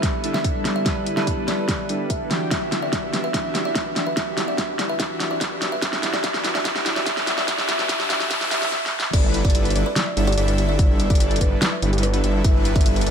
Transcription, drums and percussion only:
0.03 kick medium
0.03 snare medium
0.03 closed hi-hat medium
0.24 closed hi-hat medium
0.34 snare medium
0.44 kick medium
0.44 closed hi-hat medium
0.65 snare medium
0.65 closed hi-hat medium
0.86 kick medium
0.86 snare medium
0.86 closed hi-hat medium
1.06 closed hi-hat medium
1.17 snare medium
1.27 kick medium
1.27 closed hi-hat medium
1.48 snare medium
1.48 closed hi-hat medium
1.69 kick loud
1.69 snare medium
1.69 closed hi-hat medium
1.89 closed hi-hat medium
2.10 kick loud
2.10 closed hi-hat medium
2.31 snare medium
2.31 closed hi-hat medium
2.51 kick medium
2.51 snare medium
2.51 closed hi-hat medium
2.72 snare medium
2.72 closed hi-hat medium
2.93 kick loud
2.93 snare medium
2.93 closed hi-hat medium
3.13 snare medium
3.13 closed hi-hat medium
3.34 kick loud
3.34 snare medium
3.34 closed hi-hat medium
3.55 snare medium
3.55 closed hi-hat medium
3.75 kick loud
3.75 snare medium
3.75 closed hi-hat medium
3.96 snare medium
3.96 closed hi-hat medium
4.17 kick loud
4.17 snare medium
4.17 closed hi-hat medium
4.38 snare medium
4.38 closed hi-hat medium
4.58 kick loud
4.58 snare medium
4.58 closed hi-hat medium
4.79 snare medium
4.79 closed hi-hat medium
5.00 kick loud
5.00 snare medium
5.00 closed hi-hat medium
5.20 snare medium
5.20 closed hi-hat medium
5.41 kick medium
5.41 snare medium
5.41 closed hi-hat medium
5.62 snare medium
5.62 closed hi-hat medium
5.82 kick medium
5.82 snare medium
5.82 closed hi-hat medium
5.93 snare medium
6.03 snare medium
6.03 closed hi-hat medium
6.13 snare medium
6.24 kick loud
6.24 snare medium
6.24 closed hi-hat medium
6.34 snare medium
6.44 snare medium
6.44 closed hi-hat medium
6.55 snare medium
6.65 kick loud
6.65 snare loud
6.65 closed hi-hat medium
6.76 snare medium
6.86 snare loud
6.86 closed hi-hat medium
6.96 snare medium
7.06 kick loud
7.06 snare medium
7.06 closed hi-hat medium
7.17 snare medium
7.27 snare medium
7.27 closed hi-hat medium
7.38 snare medium
7.48 kick loud
7.48 snare loud
7.48 closed hi-hat medium
7.58 snare medium
7.69 snare loud
7.69 closed hi-hat medium
7.79 snare medium
7.89 kick loud
7.89 snare loud
7.89 closed hi-hat medium
8.00 snare medium
8.10 snare loud
8.10 closed hi-hat medium
8.20 snare medium
8.31 kick loud
8.31 snare loud
8.31 closed hi-hat medium
8.41 snare medium
8.51 snare loud
8.51 closed hi-hat medium
8.62 snare loud
8.72 snare medium
8.86 snare medium
9.00 snare loud
9.13 kick loud
9.13 closed hi-hat medium
9.13 crash loud
9.34 closed hi-hat medium
9.45 kick loud
9.45 closed hi-hat soft
9.50 closed hi-hat medium
9.55 closed hi-hat medium
9.65 closed hi-hat soft
9.70 closed hi-hat medium
9.76 closed hi-hat medium
9.96 snare loud
9.96 closed hi-hat medium
10.17 closed hi-hat medium
10.27 closed hi-hat medium
10.32 closed hi-hat medium
10.38 closed hi-hat medium
10.48 closed hi-hat medium
10.58 closed hi-hat medium
10.79 kick loud
10.79 closed hi-hat medium
11.00 closed hi-hat medium
11.10 kick loud
11.10 closed hi-hat medium
11.15 closed hi-hat medium
11.20 closed hi-hat medium
11.31 closed hi-hat soft
11.36 closed hi-hat medium
11.41 kick medium
11.41 closed hi-hat medium
11.62 snare loud
11.62 closed hi-hat medium
11.82 closed hi-hat medium
11.93 closed hi-hat medium
11.98 closed hi-hat medium
12.03 closed hi-hat medium
12.14 closed hi-hat medium
12.24 closed hi-hat medium
12.44 kick loud
12.44 closed hi-hat medium
12.65 closed hi-hat medium
12.76 kick loud
12.76 closed hi-hat soft
12.81 closed hi-hat medium
12.86 closed hi-hat medium
12.96 closed hi-hat soft
13.01 closed hi-hat medium
13.06 closed hi-hat medium

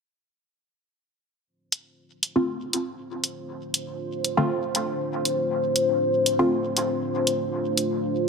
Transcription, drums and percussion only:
1.72 closed hi-hat medium
2.23 closed hi-hat medium
2.73 closed hi-hat medium
3.24 closed hi-hat medium
3.74 closed hi-hat medium
4.24 closed hi-hat medium
4.75 closed hi-hat medium
5.25 closed hi-hat medium
5.76 closed hi-hat medium
6.26 closed hi-hat medium
6.77 closed hi-hat medium
7.27 closed hi-hat medium
7.77 closed hi-hat medium

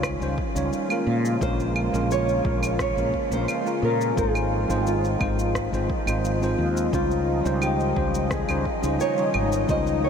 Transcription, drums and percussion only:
0.03 kick medium
0.03 cross-stick medium
0.03 cabasa medium
0.03 claves medium
0.22 cabasa soft
0.38 kick loud
0.56 cabasa medium
0.73 cabasa soft
0.90 cabasa soft
0.90 claves medium
1.25 cabasa medium
1.41 kick loud
1.41 cabasa medium
1.60 cabasa soft
1.76 claves medium
1.94 cabasa medium
2.11 cabasa soft
2.29 cabasa soft
2.45 kick loud
2.63 cabasa medium
2.63 claves medium
2.79 kick loud
2.79 cross-stick medium
2.79 cabasa medium
2.98 cabasa soft
3.14 kick medium
3.32 cabasa medium
3.48 cabasa medium
3.48 claves medium
3.66 cabasa soft
4.01 cabasa medium
4.17 kick loud
4.17 cabasa medium
4.35 cabasa soft
4.35 claves medium
4.70 cabasa medium
4.87 cabasa soft
5.04 cabasa soft
5.21 kick loud
5.21 claves medium
5.39 cabasa medium
5.55 kick medium
5.55 cross-stick medium
5.55 cabasa medium
5.74 cabasa soft
5.90 kick loud
6.07 cabasa medium
6.07 claves medium
6.25 cabasa medium
6.43 cabasa soft
6.77 cabasa medium
6.93 kick loud
6.93 cabasa medium
7.11 cabasa soft
7.46 cabasa medium
7.62 cabasa medium
7.62 claves medium
7.80 cabasa soft
7.96 kick loud
8.15 cabasa medium
8.31 kick loud
8.31 cross-stick medium
8.31 cabasa medium
8.49 cabasa soft
8.49 claves medium
8.65 kick medium
8.83 cabasa medium
9.00 cabasa medium
9.18 cabasa soft
9.34 claves medium
9.52 cabasa medium
9.69 kick loud
9.69 cabasa soft
9.87 cabasa soft

